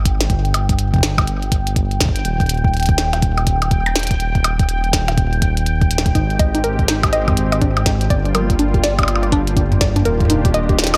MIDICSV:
0, 0, Header, 1, 7, 480
1, 0, Start_track
1, 0, Key_signature, -3, "major"
1, 0, Tempo, 487805
1, 293, Time_signature, 4, 2, 24, 8
1, 10798, End_track
2, 0, Start_track
2, 0, Title_t, "Synth texture"
2, 0, Program_c, 0, 99
2, 0, Note_on_c, 0, 79, 87
2, 10798, Note_off_c, 0, 79, 0
2, 10798, End_track
3, 0, Start_track
3, 0, Title_t, "Synth arpeggio sound"
3, 0, Program_c, 1, 84
3, 6052, Note_on_c, 1, 63, 80
3, 6194, Note_off_c, 1, 63, 0
3, 6292, Note_on_c, 1, 75, 93
3, 6416, Note_off_c, 1, 75, 0
3, 6441, Note_on_c, 1, 63, 71
3, 6487, Note_off_c, 1, 63, 0
3, 6532, Note_on_c, 1, 70, 97
3, 6656, Note_off_c, 1, 70, 0
3, 6772, Note_on_c, 1, 63, 78
3, 6847, Note_off_c, 1, 63, 0
3, 6920, Note_on_c, 1, 67, 76
3, 6967, Note_off_c, 1, 67, 0
3, 7013, Note_on_c, 1, 75, 102
3, 7087, Note_off_c, 1, 75, 0
3, 7161, Note_on_c, 1, 67, 72
3, 7237, Note_off_c, 1, 67, 0
3, 7401, Note_on_c, 1, 75, 93
3, 7488, Note_off_c, 1, 75, 0
3, 7493, Note_on_c, 1, 62, 102
3, 7567, Note_off_c, 1, 62, 0
3, 7733, Note_on_c, 1, 63, 74
3, 7875, Note_off_c, 1, 63, 0
3, 7973, Note_on_c, 1, 74, 94
3, 8096, Note_off_c, 1, 74, 0
3, 8122, Note_on_c, 1, 62, 77
3, 8167, Note_off_c, 1, 62, 0
3, 8213, Note_on_c, 1, 70, 95
3, 8336, Note_off_c, 1, 70, 0
3, 8454, Note_on_c, 1, 62, 82
3, 8528, Note_off_c, 1, 62, 0
3, 8603, Note_on_c, 1, 67, 79
3, 8648, Note_off_c, 1, 67, 0
3, 8693, Note_on_c, 1, 74, 101
3, 8767, Note_off_c, 1, 74, 0
3, 8842, Note_on_c, 1, 67, 77
3, 8917, Note_off_c, 1, 67, 0
3, 9082, Note_on_c, 1, 74, 93
3, 9169, Note_off_c, 1, 74, 0
3, 9173, Note_on_c, 1, 62, 105
3, 9247, Note_off_c, 1, 62, 0
3, 9412, Note_on_c, 1, 62, 81
3, 9554, Note_off_c, 1, 62, 0
3, 9654, Note_on_c, 1, 74, 99
3, 9777, Note_off_c, 1, 74, 0
3, 9802, Note_on_c, 1, 62, 76
3, 9847, Note_off_c, 1, 62, 0
3, 9893, Note_on_c, 1, 70, 98
3, 10016, Note_off_c, 1, 70, 0
3, 10133, Note_on_c, 1, 63, 72
3, 10207, Note_off_c, 1, 63, 0
3, 10282, Note_on_c, 1, 67, 73
3, 10327, Note_off_c, 1, 67, 0
3, 10373, Note_on_c, 1, 75, 108
3, 10447, Note_off_c, 1, 75, 0
3, 10522, Note_on_c, 1, 67, 79
3, 10597, Note_off_c, 1, 67, 0
3, 10761, Note_on_c, 1, 75, 101
3, 10798, Note_off_c, 1, 75, 0
3, 10798, End_track
4, 0, Start_track
4, 0, Title_t, "Analog synth pad"
4, 0, Program_c, 2, 89
4, 6054, Note_on_c, 2, 67, 90
4, 6055, Note_on_c, 2, 56, 81
4, 6055, Note_on_c, 2, 60, 76
4, 7955, Note_off_c, 2, 56, 0
4, 7955, Note_off_c, 2, 60, 0
4, 7955, Note_off_c, 2, 67, 0
4, 7974, Note_on_c, 2, 55, 80
4, 7975, Note_on_c, 2, 58, 77
4, 7975, Note_on_c, 2, 65, 92
4, 9874, Note_off_c, 2, 55, 0
4, 9875, Note_off_c, 2, 65, 0
4, 9893, Note_on_c, 2, 65, 76
4, 9894, Note_on_c, 2, 51, 81
4, 9894, Note_on_c, 2, 62, 75
4, 9894, Note_on_c, 2, 67, 91
4, 10798, Note_off_c, 2, 51, 0
4, 10798, Note_off_c, 2, 58, 0
4, 10798, Note_off_c, 2, 62, 0
4, 10798, Note_off_c, 2, 65, 0
4, 10798, Note_off_c, 2, 67, 0
4, 10798, End_track
5, 0, Start_track
5, 0, Title_t, "Detuned saw bass"
5, 0, Program_c, 3, 39
5, 0, Note_on_c, 3, 32, 91
5, 275, Note_off_c, 3, 32, 0
5, 294, Note_on_c, 3, 31, 87
5, 2195, Note_off_c, 3, 31, 0
5, 2214, Note_on_c, 3, 27, 91
5, 6035, Note_off_c, 3, 27, 0
5, 6054, Note_on_c, 3, 32, 87
5, 7955, Note_off_c, 3, 32, 0
5, 7974, Note_on_c, 3, 31, 88
5, 9875, Note_off_c, 3, 31, 0
5, 9894, Note_on_c, 3, 27, 87
5, 10798, Note_off_c, 3, 27, 0
5, 10798, End_track
6, 0, Start_track
6, 0, Title_t, "Percussion blips"
6, 534, Note_on_c, 9, 76, 64
6, 632, Note_off_c, 9, 76, 0
6, 1163, Note_on_c, 9, 76, 75
6, 1261, Note_off_c, 9, 76, 0
6, 3082, Note_on_c, 9, 76, 74
6, 3180, Note_off_c, 9, 76, 0
6, 3321, Note_on_c, 9, 76, 36
6, 3420, Note_off_c, 9, 76, 0
6, 3561, Note_on_c, 9, 76, 49
6, 3659, Note_off_c, 9, 76, 0
6, 3801, Note_on_c, 9, 76, 49
6, 3899, Note_off_c, 9, 76, 0
6, 4373, Note_on_c, 9, 76, 59
6, 4472, Note_off_c, 9, 76, 0
6, 5001, Note_on_c, 9, 76, 78
6, 5100, Note_off_c, 9, 76, 0
6, 6922, Note_on_c, 9, 76, 76
6, 7020, Note_off_c, 9, 76, 0
6, 7162, Note_on_c, 9, 76, 37
6, 7260, Note_off_c, 9, 76, 0
6, 7402, Note_on_c, 9, 76, 47
6, 7501, Note_off_c, 9, 76, 0
6, 7643, Note_on_c, 9, 76, 47
6, 7742, Note_off_c, 9, 76, 0
6, 8214, Note_on_c, 9, 76, 64
6, 8312, Note_off_c, 9, 76, 0
6, 8843, Note_on_c, 9, 76, 74
6, 8888, Note_off_c, 9, 76, 0
6, 8888, Note_on_c, 9, 76, 62
6, 8934, Note_off_c, 9, 76, 0
6, 8934, Note_on_c, 9, 76, 51
6, 9009, Note_off_c, 9, 76, 0
6, 9009, Note_on_c, 9, 76, 43
6, 9107, Note_off_c, 9, 76, 0
6, 10763, Note_on_c, 9, 76, 85
6, 10798, Note_off_c, 9, 76, 0
6, 10798, End_track
7, 0, Start_track
7, 0, Title_t, "Drums"
7, 54, Note_on_c, 9, 36, 103
7, 55, Note_on_c, 9, 42, 91
7, 152, Note_off_c, 9, 36, 0
7, 153, Note_off_c, 9, 42, 0
7, 202, Note_on_c, 9, 38, 112
7, 202, Note_on_c, 9, 42, 54
7, 294, Note_off_c, 9, 42, 0
7, 294, Note_on_c, 9, 36, 109
7, 294, Note_on_c, 9, 42, 48
7, 301, Note_off_c, 9, 38, 0
7, 392, Note_off_c, 9, 36, 0
7, 392, Note_off_c, 9, 42, 0
7, 443, Note_on_c, 9, 42, 25
7, 534, Note_off_c, 9, 42, 0
7, 534, Note_on_c, 9, 42, 97
7, 632, Note_off_c, 9, 42, 0
7, 682, Note_on_c, 9, 42, 52
7, 683, Note_on_c, 9, 36, 104
7, 774, Note_off_c, 9, 42, 0
7, 774, Note_on_c, 9, 42, 54
7, 781, Note_off_c, 9, 36, 0
7, 872, Note_off_c, 9, 42, 0
7, 922, Note_on_c, 9, 36, 102
7, 922, Note_on_c, 9, 42, 27
7, 945, Note_off_c, 9, 36, 0
7, 945, Note_on_c, 9, 36, 86
7, 968, Note_off_c, 9, 36, 0
7, 968, Note_on_c, 9, 36, 68
7, 991, Note_off_c, 9, 36, 0
7, 991, Note_on_c, 9, 36, 57
7, 1014, Note_off_c, 9, 42, 0
7, 1014, Note_on_c, 9, 38, 117
7, 1014, Note_on_c, 9, 42, 96
7, 1090, Note_off_c, 9, 36, 0
7, 1112, Note_off_c, 9, 38, 0
7, 1112, Note_off_c, 9, 42, 0
7, 1163, Note_on_c, 9, 36, 124
7, 1163, Note_on_c, 9, 42, 53
7, 1255, Note_off_c, 9, 42, 0
7, 1255, Note_on_c, 9, 42, 55
7, 1261, Note_off_c, 9, 36, 0
7, 1353, Note_off_c, 9, 42, 0
7, 1402, Note_on_c, 9, 42, 27
7, 1494, Note_off_c, 9, 42, 0
7, 1494, Note_on_c, 9, 36, 110
7, 1494, Note_on_c, 9, 42, 89
7, 1592, Note_off_c, 9, 36, 0
7, 1592, Note_off_c, 9, 42, 0
7, 1642, Note_on_c, 9, 42, 51
7, 1734, Note_off_c, 9, 42, 0
7, 1734, Note_on_c, 9, 36, 105
7, 1734, Note_on_c, 9, 42, 54
7, 1832, Note_off_c, 9, 36, 0
7, 1832, Note_off_c, 9, 42, 0
7, 1882, Note_on_c, 9, 42, 26
7, 1973, Note_off_c, 9, 42, 0
7, 1973, Note_on_c, 9, 38, 121
7, 1973, Note_on_c, 9, 42, 95
7, 1974, Note_on_c, 9, 36, 119
7, 2023, Note_off_c, 9, 36, 0
7, 2023, Note_on_c, 9, 36, 90
7, 2054, Note_off_c, 9, 36, 0
7, 2054, Note_on_c, 9, 36, 81
7, 2071, Note_off_c, 9, 38, 0
7, 2071, Note_off_c, 9, 42, 0
7, 2122, Note_on_c, 9, 42, 55
7, 2152, Note_off_c, 9, 36, 0
7, 2214, Note_off_c, 9, 42, 0
7, 2214, Note_on_c, 9, 42, 48
7, 2312, Note_off_c, 9, 42, 0
7, 2362, Note_on_c, 9, 42, 25
7, 2363, Note_on_c, 9, 36, 103
7, 2374, Note_off_c, 9, 42, 0
7, 2374, Note_on_c, 9, 42, 20
7, 2423, Note_off_c, 9, 42, 0
7, 2423, Note_on_c, 9, 42, 16
7, 2454, Note_off_c, 9, 42, 0
7, 2454, Note_on_c, 9, 42, 98
7, 2461, Note_off_c, 9, 36, 0
7, 2503, Note_off_c, 9, 42, 0
7, 2503, Note_on_c, 9, 42, 11
7, 2602, Note_off_c, 9, 42, 0
7, 2602, Note_on_c, 9, 36, 112
7, 2693, Note_on_c, 9, 42, 23
7, 2701, Note_off_c, 9, 36, 0
7, 2723, Note_off_c, 9, 42, 0
7, 2723, Note_on_c, 9, 42, 29
7, 2752, Note_off_c, 9, 42, 0
7, 2752, Note_on_c, 9, 42, 34
7, 2782, Note_off_c, 9, 42, 0
7, 2782, Note_on_c, 9, 42, 41
7, 2812, Note_off_c, 9, 42, 0
7, 2812, Note_on_c, 9, 42, 46
7, 2841, Note_off_c, 9, 42, 0
7, 2841, Note_on_c, 9, 42, 26
7, 2842, Note_on_c, 9, 36, 126
7, 2932, Note_off_c, 9, 42, 0
7, 2932, Note_on_c, 9, 38, 121
7, 2932, Note_on_c, 9, 42, 92
7, 2941, Note_off_c, 9, 36, 0
7, 3031, Note_off_c, 9, 38, 0
7, 3031, Note_off_c, 9, 42, 0
7, 3082, Note_on_c, 9, 42, 56
7, 3173, Note_off_c, 9, 42, 0
7, 3173, Note_on_c, 9, 36, 113
7, 3173, Note_on_c, 9, 42, 56
7, 3271, Note_off_c, 9, 42, 0
7, 3272, Note_off_c, 9, 36, 0
7, 3321, Note_on_c, 9, 42, 25
7, 3412, Note_off_c, 9, 42, 0
7, 3412, Note_on_c, 9, 42, 89
7, 3413, Note_on_c, 9, 36, 107
7, 3510, Note_off_c, 9, 42, 0
7, 3512, Note_off_c, 9, 36, 0
7, 3561, Note_on_c, 9, 42, 49
7, 3652, Note_off_c, 9, 42, 0
7, 3652, Note_on_c, 9, 42, 52
7, 3653, Note_on_c, 9, 36, 111
7, 3751, Note_off_c, 9, 36, 0
7, 3751, Note_off_c, 9, 42, 0
7, 3801, Note_on_c, 9, 42, 26
7, 3892, Note_off_c, 9, 42, 0
7, 3892, Note_on_c, 9, 38, 122
7, 3892, Note_on_c, 9, 42, 41
7, 3930, Note_off_c, 9, 42, 0
7, 3930, Note_on_c, 9, 42, 52
7, 3967, Note_off_c, 9, 42, 0
7, 3967, Note_on_c, 9, 42, 66
7, 3991, Note_off_c, 9, 38, 0
7, 4004, Note_off_c, 9, 42, 0
7, 4004, Note_on_c, 9, 42, 77
7, 4042, Note_off_c, 9, 42, 0
7, 4042, Note_on_c, 9, 36, 107
7, 4042, Note_on_c, 9, 42, 52
7, 4133, Note_off_c, 9, 42, 0
7, 4133, Note_on_c, 9, 42, 50
7, 4140, Note_off_c, 9, 36, 0
7, 4231, Note_off_c, 9, 42, 0
7, 4281, Note_on_c, 9, 42, 24
7, 4282, Note_on_c, 9, 36, 108
7, 4373, Note_off_c, 9, 42, 0
7, 4373, Note_on_c, 9, 42, 91
7, 4380, Note_off_c, 9, 36, 0
7, 4472, Note_off_c, 9, 42, 0
7, 4522, Note_on_c, 9, 36, 124
7, 4522, Note_on_c, 9, 42, 47
7, 4612, Note_off_c, 9, 42, 0
7, 4612, Note_on_c, 9, 42, 52
7, 4620, Note_off_c, 9, 36, 0
7, 4711, Note_off_c, 9, 42, 0
7, 4762, Note_on_c, 9, 42, 25
7, 4853, Note_off_c, 9, 42, 0
7, 4853, Note_on_c, 9, 36, 106
7, 4853, Note_on_c, 9, 38, 118
7, 4853, Note_on_c, 9, 42, 84
7, 4951, Note_off_c, 9, 36, 0
7, 4951, Note_off_c, 9, 38, 0
7, 4951, Note_off_c, 9, 42, 0
7, 5001, Note_on_c, 9, 42, 54
7, 5093, Note_off_c, 9, 42, 0
7, 5093, Note_on_c, 9, 36, 107
7, 5093, Note_on_c, 9, 42, 53
7, 5192, Note_off_c, 9, 36, 0
7, 5192, Note_off_c, 9, 42, 0
7, 5242, Note_on_c, 9, 42, 25
7, 5333, Note_off_c, 9, 42, 0
7, 5333, Note_on_c, 9, 36, 120
7, 5333, Note_on_c, 9, 42, 86
7, 5431, Note_off_c, 9, 42, 0
7, 5432, Note_off_c, 9, 36, 0
7, 5482, Note_on_c, 9, 42, 48
7, 5573, Note_off_c, 9, 42, 0
7, 5573, Note_on_c, 9, 42, 50
7, 5672, Note_off_c, 9, 42, 0
7, 5722, Note_on_c, 9, 36, 108
7, 5722, Note_on_c, 9, 42, 25
7, 5812, Note_off_c, 9, 42, 0
7, 5812, Note_on_c, 9, 42, 89
7, 5820, Note_off_c, 9, 36, 0
7, 5887, Note_on_c, 9, 38, 119
7, 5911, Note_off_c, 9, 42, 0
7, 5961, Note_on_c, 9, 42, 50
7, 5962, Note_on_c, 9, 36, 111
7, 5985, Note_off_c, 9, 38, 0
7, 6053, Note_off_c, 9, 36, 0
7, 6053, Note_off_c, 9, 42, 0
7, 6053, Note_on_c, 9, 36, 97
7, 6053, Note_on_c, 9, 42, 47
7, 6151, Note_off_c, 9, 42, 0
7, 6152, Note_off_c, 9, 36, 0
7, 6202, Note_on_c, 9, 42, 23
7, 6292, Note_off_c, 9, 42, 0
7, 6292, Note_on_c, 9, 42, 91
7, 6292, Note_on_c, 9, 45, 99
7, 6293, Note_on_c, 9, 36, 121
7, 6391, Note_off_c, 9, 42, 0
7, 6391, Note_off_c, 9, 45, 0
7, 6392, Note_off_c, 9, 36, 0
7, 6442, Note_on_c, 9, 42, 47
7, 6533, Note_off_c, 9, 42, 0
7, 6533, Note_on_c, 9, 42, 50
7, 6631, Note_off_c, 9, 42, 0
7, 6682, Note_on_c, 9, 36, 108
7, 6682, Note_on_c, 9, 42, 23
7, 6773, Note_off_c, 9, 42, 0
7, 6773, Note_on_c, 9, 38, 112
7, 6773, Note_on_c, 9, 42, 82
7, 6780, Note_off_c, 9, 36, 0
7, 6871, Note_off_c, 9, 38, 0
7, 6871, Note_off_c, 9, 42, 0
7, 6922, Note_on_c, 9, 36, 100
7, 6922, Note_on_c, 9, 42, 49
7, 7013, Note_off_c, 9, 42, 0
7, 7013, Note_on_c, 9, 42, 52
7, 7021, Note_off_c, 9, 36, 0
7, 7112, Note_off_c, 9, 42, 0
7, 7162, Note_on_c, 9, 36, 123
7, 7162, Note_on_c, 9, 42, 26
7, 7162, Note_on_c, 9, 45, 89
7, 7253, Note_off_c, 9, 42, 0
7, 7253, Note_on_c, 9, 42, 84
7, 7260, Note_off_c, 9, 45, 0
7, 7261, Note_off_c, 9, 36, 0
7, 7352, Note_off_c, 9, 42, 0
7, 7402, Note_on_c, 9, 42, 47
7, 7494, Note_off_c, 9, 42, 0
7, 7494, Note_on_c, 9, 36, 100
7, 7494, Note_on_c, 9, 42, 46
7, 7592, Note_off_c, 9, 36, 0
7, 7592, Note_off_c, 9, 42, 0
7, 7643, Note_on_c, 9, 42, 25
7, 7734, Note_off_c, 9, 42, 0
7, 7734, Note_on_c, 9, 36, 110
7, 7734, Note_on_c, 9, 38, 121
7, 7734, Note_on_c, 9, 42, 88
7, 7832, Note_off_c, 9, 36, 0
7, 7833, Note_off_c, 9, 38, 0
7, 7833, Note_off_c, 9, 42, 0
7, 7882, Note_on_c, 9, 42, 50
7, 7974, Note_off_c, 9, 42, 0
7, 7974, Note_on_c, 9, 36, 112
7, 7974, Note_on_c, 9, 42, 46
7, 8072, Note_off_c, 9, 36, 0
7, 8072, Note_off_c, 9, 42, 0
7, 8123, Note_on_c, 9, 42, 23
7, 8214, Note_off_c, 9, 42, 0
7, 8214, Note_on_c, 9, 42, 87
7, 8214, Note_on_c, 9, 45, 96
7, 8312, Note_off_c, 9, 42, 0
7, 8312, Note_off_c, 9, 45, 0
7, 8363, Note_on_c, 9, 36, 101
7, 8363, Note_on_c, 9, 42, 45
7, 8454, Note_off_c, 9, 42, 0
7, 8454, Note_on_c, 9, 42, 49
7, 8461, Note_off_c, 9, 36, 0
7, 8552, Note_off_c, 9, 42, 0
7, 8602, Note_on_c, 9, 36, 102
7, 8604, Note_on_c, 9, 42, 23
7, 8695, Note_off_c, 9, 42, 0
7, 8695, Note_on_c, 9, 38, 106
7, 8695, Note_on_c, 9, 42, 86
7, 8701, Note_off_c, 9, 36, 0
7, 8793, Note_off_c, 9, 38, 0
7, 8793, Note_off_c, 9, 42, 0
7, 8842, Note_on_c, 9, 36, 115
7, 8843, Note_on_c, 9, 42, 50
7, 8934, Note_off_c, 9, 42, 0
7, 8934, Note_on_c, 9, 42, 49
7, 8941, Note_off_c, 9, 36, 0
7, 9033, Note_off_c, 9, 42, 0
7, 9083, Note_on_c, 9, 42, 24
7, 9174, Note_off_c, 9, 42, 0
7, 9174, Note_on_c, 9, 36, 104
7, 9174, Note_on_c, 9, 42, 81
7, 9272, Note_off_c, 9, 36, 0
7, 9272, Note_off_c, 9, 42, 0
7, 9323, Note_on_c, 9, 42, 49
7, 9413, Note_on_c, 9, 36, 100
7, 9414, Note_off_c, 9, 42, 0
7, 9414, Note_on_c, 9, 42, 49
7, 9512, Note_off_c, 9, 36, 0
7, 9512, Note_off_c, 9, 42, 0
7, 9563, Note_on_c, 9, 42, 23
7, 9563, Note_on_c, 9, 45, 93
7, 9653, Note_off_c, 9, 42, 0
7, 9653, Note_on_c, 9, 38, 120
7, 9653, Note_on_c, 9, 42, 90
7, 9654, Note_on_c, 9, 36, 116
7, 9661, Note_off_c, 9, 45, 0
7, 9751, Note_off_c, 9, 38, 0
7, 9751, Note_off_c, 9, 42, 0
7, 9752, Note_off_c, 9, 36, 0
7, 9802, Note_on_c, 9, 42, 47
7, 9802, Note_on_c, 9, 45, 89
7, 9893, Note_off_c, 9, 42, 0
7, 9893, Note_on_c, 9, 42, 48
7, 9900, Note_off_c, 9, 45, 0
7, 9991, Note_off_c, 9, 42, 0
7, 10042, Note_on_c, 9, 36, 96
7, 10042, Note_on_c, 9, 42, 24
7, 10088, Note_on_c, 9, 45, 87
7, 10133, Note_off_c, 9, 42, 0
7, 10133, Note_on_c, 9, 42, 90
7, 10141, Note_off_c, 9, 36, 0
7, 10186, Note_off_c, 9, 45, 0
7, 10232, Note_off_c, 9, 42, 0
7, 10282, Note_on_c, 9, 42, 50
7, 10283, Note_on_c, 9, 36, 106
7, 10373, Note_off_c, 9, 42, 0
7, 10373, Note_on_c, 9, 42, 51
7, 10381, Note_off_c, 9, 36, 0
7, 10472, Note_off_c, 9, 42, 0
7, 10522, Note_on_c, 9, 42, 24
7, 10523, Note_on_c, 9, 36, 113
7, 10613, Note_off_c, 9, 42, 0
7, 10613, Note_on_c, 9, 38, 109
7, 10613, Note_on_c, 9, 42, 81
7, 10621, Note_off_c, 9, 36, 0
7, 10663, Note_off_c, 9, 38, 0
7, 10663, Note_on_c, 9, 38, 85
7, 10694, Note_off_c, 9, 38, 0
7, 10694, Note_off_c, 9, 42, 0
7, 10694, Note_on_c, 9, 38, 67
7, 10694, Note_on_c, 9, 42, 68
7, 10763, Note_off_c, 9, 38, 0
7, 10763, Note_off_c, 9, 42, 0
7, 10763, Note_on_c, 9, 38, 59
7, 10763, Note_on_c, 9, 42, 22
7, 10798, Note_off_c, 9, 38, 0
7, 10798, Note_off_c, 9, 42, 0
7, 10798, End_track
0, 0, End_of_file